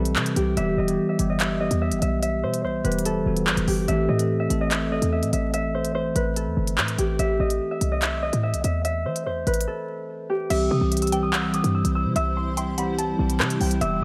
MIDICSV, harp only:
0, 0, Header, 1, 2, 480
1, 0, Start_track
1, 0, Tempo, 413793
1, 662, Time_signature, 4, 2, 24, 8
1, 16289, End_track
2, 0, Start_track
2, 0, Title_t, "Harp"
2, 0, Program_c, 0, 46
2, 0, Note_on_c, 0, 69, 80
2, 0, Note_on_c, 0, 71, 81
2, 0, Note_on_c, 0, 76, 112
2, 423, Note_on_c, 0, 67, 81
2, 657, Note_off_c, 0, 76, 0
2, 661, Note_on_c, 0, 76, 106
2, 904, Note_on_c, 0, 75, 76
2, 974, Note_off_c, 0, 76, 0
2, 1264, Note_on_c, 0, 76, 79
2, 1334, Note_off_c, 0, 75, 0
2, 1504, Note_on_c, 0, 75, 83
2, 1573, Note_off_c, 0, 76, 0
2, 1620, Note_on_c, 0, 76, 98
2, 1690, Note_off_c, 0, 75, 0
2, 1839, Note_off_c, 0, 71, 0
2, 1859, Note_on_c, 0, 75, 84
2, 1928, Note_off_c, 0, 76, 0
2, 2106, Note_on_c, 0, 76, 89
2, 2175, Note_off_c, 0, 75, 0
2, 2246, Note_off_c, 0, 69, 0
2, 2338, Note_off_c, 0, 76, 0
2, 2343, Note_on_c, 0, 76, 81
2, 2575, Note_off_c, 0, 76, 0
2, 2580, Note_on_c, 0, 76, 104
2, 2823, Note_on_c, 0, 72, 88
2, 3063, Note_off_c, 0, 72, 0
2, 3067, Note_on_c, 0, 72, 100
2, 3153, Note_off_c, 0, 67, 0
2, 3298, Note_on_c, 0, 71, 82
2, 3367, Note_off_c, 0, 72, 0
2, 3545, Note_on_c, 0, 69, 82
2, 4265, Note_on_c, 0, 67, 75
2, 4497, Note_off_c, 0, 76, 0
2, 4502, Note_on_c, 0, 76, 108
2, 4741, Note_on_c, 0, 75, 76
2, 4810, Note_off_c, 0, 76, 0
2, 5101, Note_on_c, 0, 76, 87
2, 5170, Note_off_c, 0, 75, 0
2, 5347, Note_on_c, 0, 75, 79
2, 5416, Note_off_c, 0, 76, 0
2, 5460, Note_on_c, 0, 76, 87
2, 5530, Note_off_c, 0, 75, 0
2, 5674, Note_off_c, 0, 71, 0
2, 5705, Note_on_c, 0, 75, 87
2, 5774, Note_off_c, 0, 76, 0
2, 5943, Note_on_c, 0, 76, 81
2, 6013, Note_off_c, 0, 75, 0
2, 6093, Note_off_c, 0, 69, 0
2, 6182, Note_off_c, 0, 76, 0
2, 6186, Note_on_c, 0, 76, 78
2, 6416, Note_off_c, 0, 76, 0
2, 6421, Note_on_c, 0, 76, 107
2, 6664, Note_on_c, 0, 72, 82
2, 6893, Note_off_c, 0, 72, 0
2, 6898, Note_on_c, 0, 72, 96
2, 6995, Note_off_c, 0, 67, 0
2, 7141, Note_on_c, 0, 71, 89
2, 7211, Note_off_c, 0, 72, 0
2, 7382, Note_on_c, 0, 69, 83
2, 8102, Note_on_c, 0, 67, 76
2, 8337, Note_off_c, 0, 76, 0
2, 8342, Note_on_c, 0, 76, 114
2, 8584, Note_on_c, 0, 75, 84
2, 8654, Note_off_c, 0, 76, 0
2, 8945, Note_on_c, 0, 76, 78
2, 9014, Note_off_c, 0, 75, 0
2, 9184, Note_on_c, 0, 75, 83
2, 9254, Note_off_c, 0, 76, 0
2, 9304, Note_on_c, 0, 76, 96
2, 9374, Note_off_c, 0, 75, 0
2, 9518, Note_off_c, 0, 71, 0
2, 9539, Note_on_c, 0, 75, 88
2, 9609, Note_off_c, 0, 76, 0
2, 9782, Note_on_c, 0, 76, 87
2, 9852, Note_off_c, 0, 75, 0
2, 9929, Note_off_c, 0, 69, 0
2, 10021, Note_off_c, 0, 76, 0
2, 10026, Note_on_c, 0, 76, 81
2, 10256, Note_off_c, 0, 76, 0
2, 10261, Note_on_c, 0, 76, 107
2, 10505, Note_on_c, 0, 72, 85
2, 10740, Note_off_c, 0, 72, 0
2, 10745, Note_on_c, 0, 72, 92
2, 10832, Note_off_c, 0, 67, 0
2, 10982, Note_on_c, 0, 71, 84
2, 11052, Note_off_c, 0, 72, 0
2, 11223, Note_on_c, 0, 69, 95
2, 11943, Note_on_c, 0, 67, 79
2, 12181, Note_on_c, 0, 88, 105
2, 12260, Note_off_c, 0, 76, 0
2, 12420, Note_on_c, 0, 87, 73
2, 12490, Note_off_c, 0, 88, 0
2, 12782, Note_on_c, 0, 88, 83
2, 12851, Note_off_c, 0, 87, 0
2, 13022, Note_on_c, 0, 87, 84
2, 13091, Note_off_c, 0, 88, 0
2, 13140, Note_on_c, 0, 88, 84
2, 13210, Note_off_c, 0, 87, 0
2, 13359, Note_off_c, 0, 71, 0
2, 13388, Note_on_c, 0, 87, 86
2, 13457, Note_off_c, 0, 88, 0
2, 13625, Note_on_c, 0, 88, 85
2, 13695, Note_off_c, 0, 87, 0
2, 13770, Note_off_c, 0, 69, 0
2, 13859, Note_off_c, 0, 88, 0
2, 13863, Note_on_c, 0, 88, 83
2, 14100, Note_off_c, 0, 88, 0
2, 14104, Note_on_c, 0, 88, 112
2, 14344, Note_on_c, 0, 84, 88
2, 14578, Note_off_c, 0, 84, 0
2, 14583, Note_on_c, 0, 84, 93
2, 14673, Note_off_c, 0, 67, 0
2, 14824, Note_on_c, 0, 83, 84
2, 14894, Note_off_c, 0, 84, 0
2, 15061, Note_on_c, 0, 81, 86
2, 15423, Note_off_c, 0, 88, 0
2, 15784, Note_on_c, 0, 79, 81
2, 16022, Note_on_c, 0, 88, 114
2, 16289, Note_off_c, 0, 79, 0
2, 16289, Note_off_c, 0, 81, 0
2, 16289, Note_off_c, 0, 83, 0
2, 16289, Note_off_c, 0, 88, 0
2, 16289, End_track
0, 0, End_of_file